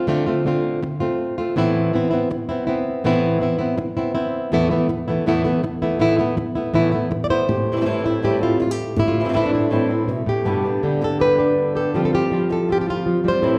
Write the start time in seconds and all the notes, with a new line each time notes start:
0.07 D3 A3 C4 F4
0.26 A3 C4 F4
0.45 D3 A3 C4 F4
0.83 muted nylon-string guitar stroke
1.00 A3 C4 F4
1.38 A3 C4 F4
1.56 A2 E3 B3 C4 E4
1.93 E3 B3 C4 E4
2.11 B3 C4 E4
2.30 muted nylon-string guitar stroke
2.49 B3 C4 E4
2.67 B3 C4 E4
3.04 A2 E3 B3 C4 E4
3.40 E3 B3 C4 E4
3.59 B3 C4 E4
3.77 muted nylon-string guitar stroke
3.97 B3 C4 E4
4.15 B3 C4 E4
4.52 E2 A2 E3 A3 B3 E4
4.71 E3 A3 B3 E4
4.89 muted nylon-string guitar stroke
5.08 E3 A3 B3 E4
5.26 E2 A2 E3 A3 B3 E4
5.44 E3 A3 B3 E4
5.63 muted nylon-string guitar stroke
5.82 E3 A3 B3 E4
5.99 A2 E3 A3 B3 E4
6.18 A3 B3 E4
6.37 muted nylon-string guitar stroke
6.55 A3 B3 E4
6.74 A2 E3 A3 B3 E4
6.92 A3 B3 E4
7.11 muted nylon-string guitar stroke
7.24 D5
7.30 A3 B3 E4 C5
7.48 A2 G4, muted nylon-string guitar stroke
7.72 E3 G3 C4 E4
7.76 E3 G3 C4 E4
7.81 E3 G3 C4 E4
7.85 A2 E3 G3 A3 C4 E4
8.04 G3 C4 E4
8.22 A2 E3 G3 C4 E4 G4
8.41 G3 C4 E4 F4
8.59 F4, muted nylon-string guitar stroke
8.71 G4
8.96 A2 E4, muted nylon-string guitar stroke
9.08 F4
9.20 E3 G3 C4 E4
9.24 E3 G3 C4 E4
9.29 E3 G3 C4 E4
9.33 A2 E3 G3 A3 C4 E4
9.46 D4
9.52 G3 C4 E4
9.70 A2 E3 G3 C4 E4
9.89 G3 A3 C4 E4
10.08 B2, muted nylon-string guitar stroke
10.26 A2 G4
10.45 G2 B2 D3 G3 B3 G4
10.64 D3 G3 B3 G4
10.82 D3 G3 B3 G4
11.01 A4, muted nylon-string guitar stroke
11.20 D3 G3 B3 G4 B4
11.38 D3 G3 B3 D4 G4
11.75 D3 G3 B3 G4 A4
11.94 F3 G3 C4 F4 G4
12.05 A4
12.13 G3 C4 F4 G4
12.31 F3 G3 C4 F4
12.49 A4, muted nylon-string guitar stroke
12.69 G3 C4 F4 G4
12.81 G4
12.87 G3 C4 F4
13.06 F3
13.24 G3 C4 F4
13.28 C5
13.42 A2 E3 G3 C4 E4 G4